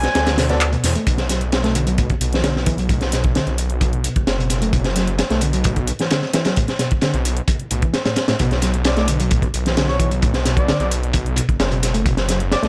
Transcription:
Already playing: ambient pad B3 F#4 A4 D5, soft synth lead G#5
0.03 snare, closed hi-hat
0.15 detuned saw bass D2, snare, closed hi-hat
0.27 snare, closed hi-hat
0.38 reed electric piano B2, snare, closed hi-hat, open hi-hat
0.49 grand piano B3 F#4 A4 D5, snare, closed hi-hat
0.60 clap, closed hi-hat
0.73 reed electric piano B2, closed hi-hat
0.84 detuned saw bass E2, snare, closed hi-hat, open hi-hat
0.95 reed electric piano A3, closed hi-hat
1.07 detuned saw bass B1, reed electric piano B2, kick, closed hi-hat
1.18 snare, closed hi-hat
1.29 reed electric piano F#3, snare, closed hi-hat
1.41 closed hi-hat
1.52 snare, closed hi-hat
1.64 reed electric piano A3, snare, closed hi-hat
1.75 reed electric piano D3, closed hi-hat
1.87 reed electric piano F#3, closed hi-hat
1.98 reed electric piano A2, kick, closed hi-hat
2.10 kick, closed hi-hat
2.21 detuned saw bass B1, closed hi-hat
2.33 reed electric piano E3, snare, closed hi-hat
2.44 reed electric piano D3, snare, closed hi-hat
2.56 snare
2.66 reed electric piano E3, kick, closed hi-hat
2.78 reed electric piano F#3, closed hi-hat
2.89 reed electric piano A2, kick, closed hi-hat
3.01 snare, closed hi-hat
3.12 reed electric piano B2, snare, closed hi-hat
3.24 kick, closed hi-hat
3.35 reed electric piano D3, snare, closed hi-hat
3.47 detuned saw bass B1, closed hi-hat
3.58 closed hi-hat
3.70 closed hi-hat
3.81 kick, closed hi-hat
3.93 closed hi-hat
4.04 reed electric piano B2, closed hi-hat
4.16 detuned saw bass F#1, kick, closed hi-hat
4.27 detuned saw bass F#1, snare, closed hi-hat
4.39 reed electric piano B2, closed hi-hat
4.50 snare, closed hi-hat
4.62 reed electric piano A3, closed hi-hat
4.73 reed electric piano B2, kick, closed hi-hat
4.84 snare, closed hi-hat
4.96 reed electric piano F#3, snare, closed hi-hat
5.07 closed hi-hat
5.19 snare, closed hi-hat
5.30 detuned saw bass B1, reed electric piano A3, snare, closed hi-hat
5.41 reed electric piano D3, closed hi-hat
5.53 reed electric piano F#3, closed hi-hat
5.64 reed electric piano A2, kick, closed hi-hat
5.76 kick, closed hi-hat
5.87 closed hi-hat
5.99 reed electric piano E3, snare, closed hi-hat
6.11 reed electric piano D3, snare, closed hi-hat
6.22 snare
6.33 reed electric piano E3, snare, closed hi-hat
6.45 reed electric piano F#3, snare, closed hi-hat
6.56 reed electric piano A2, kick, closed hi-hat
6.68 snare, closed hi-hat
6.79 reed electric piano B2, snare, closed hi-hat
6.91 kick, closed hi-hat
7.01 reed electric piano D3, snare, closed hi-hat
7.14 detuned saw bass B1, closed hi-hat
7.25 closed hi-hat
7.37 closed hi-hat
7.48 kick, closed hi-hat
7.60 closed hi-hat
7.71 detuned saw bass B1, reed electric piano A2, closed hi-hat
7.82 reed electric piano E3, kick, closed hi-hat
7.94 snare, closed hi-hat
8.05 reed electric piano A2, snare, closed hi-hat
8.16 snare, closed hi-hat
8.28 reed electric piano A2, snare, closed hi-hat
8.39 detuned saw bass B1, reed electric piano B2, kick, closed hi-hat
8.51 snare, closed hi-hat
8.62 reed electric piano F#3, snare, closed hi-hat
8.74 closed hi-hat
8.85 soft synth lead D5, snare, closed hi-hat
8.97 reed electric piano A3, soft synth lead D5, snare, closed hi-hat
9.08 reed electric piano D3, closed hi-hat
9.20 reed electric piano F#3, closed hi-hat
9.31 reed electric piano A2, kick, closed hi-hat
9.42 kick, closed hi-hat
9.54 detuned saw bass B1, closed hi-hat
9.66 reed electric piano E3, snare, closed hi-hat
9.77 reed electric piano D3, snare, closed hi-hat
9.88 soft synth lead C#5, snare
10.00 reed electric piano E3, kick, closed hi-hat
10.11 reed electric piano F#3, closed hi-hat
10.22 reed electric piano A2, kick, closed hi-hat
10.34 snare, closed hi-hat
10.45 reed electric piano B2, snare, closed hi-hat
10.57 soft synth lead D5, kick, closed hi-hat
10.68 reed electric piano D3, soft synth lead D5, snare, closed hi-hat
10.80 detuned saw bass B1, soft synth lead D5, closed hi-hat
10.91 closed hi-hat
11.03 closed hi-hat
11.13 kick, closed hi-hat
11.26 closed hi-hat
11.36 reed electric piano B2, closed hi-hat
11.49 detuned saw bass F#1, kick, closed hi-hat
11.60 detuned saw bass F#1, snare, closed hi-hat
11.72 reed electric piano B2, closed hi-hat
11.83 snare, closed hi-hat
11.94 reed electric piano A3, closed hi-hat
12.05 reed electric piano B2, kick, closed hi-hat
12.17 snare, closed hi-hat
12.28 reed electric piano F#3, snare, closed hi-hat
12.40 closed hi-hat
12.52 soft synth lead D5, snare, closed hi-hat
12.63 detuned saw bass B1, reed electric piano A3, soft synth lead D5, snare, closed hi-hat

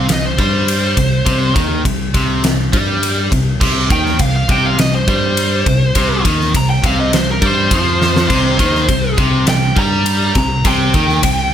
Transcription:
Already playing: lead electric guitar F5
0.08 picked electric bass C2, overdriven electric guitar C3, lead electric guitar D#5, snare, ride
0.26 lead electric guitar C5
0.38 picked electric bass G2, overdriven electric guitar G3, lead electric guitar C5, kick, ride
0.68 ride
0.97 picked electric bass C2, overdriven electric guitar C3, kick, ride
1.26 picked electric bass C2, overdriven electric guitar C3, kick, ride
1.55 picked electric bass D#2, overdriven electric guitar D#3, kick, ride
1.85 picked electric bass C2, overdriven electric guitar C3, kick, ride
2.14 picked electric bass C2, overdriven electric guitar C3, kick, ride
2.44 picked electric bass C2, overdriven electric guitar C3, snare, ride
2.73 picked electric bass G2, overdriven electric guitar G3, kick, ride
3.03 ride
3.32 picked electric bass C2, overdriven electric guitar C3, kick, ride
3.61 picked electric bass C2, overdriven electric guitar C3, kick, crash
3.90 picked electric bass D#2, overdriven electric guitar D#3, lead electric guitar G5, kick, ride
4.06 snare
4.19 picked electric bass C2, overdriven electric guitar C3, lead electric guitar F5, kick, ride
4.36 lead electric guitar F5
4.49 picked electric bass C2, overdriven electric guitar C3, lead electric guitar G5, kick, ride
4.66 lead electric guitar F5
4.79 picked electric bass C2, overdriven electric guitar C3, lead electric guitar D#5, snare, ride
4.95 lead electric guitar C5
5.08 picked electric bass G2, overdriven electric guitar G3, lead electric guitar C5, kick, ride
5.37 ride
5.66 picked electric bass C2, overdriven electric guitar C3, kick, ride
5.95 picked electric bass C2, overdriven electric guitar C3, kick, ride
6.25 picked electric bass D#2, overdriven electric guitar D#3, kick, ride
6.41 snare
6.54 picked electric bass C2, overdriven electric guitar C3, lead electric guitar A#5, kick, ride
6.70 lead electric guitar G5
6.83 picked electric bass C2, overdriven electric guitar C3, lead electric guitar F5, kick, ride
7.00 lead electric guitar D#5
7.13 picked electric bass C2, overdriven electric guitar C3, lead electric guitar C5, snare, ride
7.31 lead electric guitar A#4
7.42 picked electric bass G2, overdriven electric guitar G3, lead electric guitar C5, kick, ride
7.71 picked electric bass F2, overdriven electric guitar F3, kick, ride
8.02 snare
8.16 snare
8.29 picked electric bass C2, overdriven electric guitar C3, kick, crash
8.59 picked electric bass D#2, overdriven electric guitar D#3, kick, ride
8.75 snare
8.88 picked electric bass C2, overdriven electric guitar C3, kick, ride
9.18 picked electric bass C2, overdriven electric guitar C3, kick, ride
9.47 picked electric bass C2, overdriven electric guitar C3, lead electric guitar G5, snare, ride
9.76 picked electric bass G2, overdriven electric guitar G3, lead electric guitar A#5, kick, ride
10.06 ride
10.35 picked electric bass C2, overdriven electric guitar C3, lead electric guitar A#5, kick, ride
10.65 picked electric bass C2, overdriven electric guitar C3, lead electric guitar G5, kick, ride
10.94 picked electric bass D#2, overdriven electric guitar D#3, kick, ride
11.09 snare
11.23 picked electric bass C2, overdriven electric guitar C3, kick, ride

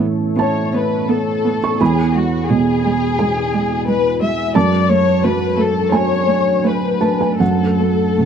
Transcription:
Already playing: felt piano A2 E3 E5, ambient pad B3 A4 C#5
0.36 cello B3, violin section C#5, felt piano A5
0.73 cello B3, violin section B4
1.08 cello B3, violin section A4
1.45 cello B3
1.64 felt piano C#6
1.80 felt piano E2 B5, cello G#3, ambient pad G#3 F#4 B4, violin section G#4
2.14 cello G#3, violin section F#4
2.48 felt piano B2, cello G#3, violin section G#4
2.85 cello G#3
3.19 cello G#3, felt piano G#5
3.54 cello G#3
3.87 cello G#3, violin section B4
4.21 cello G#3, violin section E5
4.55 felt piano F#2 A5, cello A3, ambient pad A3 D4, violin section D5
4.89 cello A3, violin section C#5
5.23 felt piano F#3, cello A3, violin section B4
5.57 cello A3, violin section A4
5.92 cello A3, violin section C#5, felt piano G#5
6.27 cello A3
6.64 cello A3, violin section B4
7.01 cello A3, felt piano A5
7.21 felt piano G#5
7.39 felt piano F#2 F#5, cello A3, ambient pad F#4 C#5, violin section A4
7.78 cello A3
8.17 felt piano C#3, cello A3

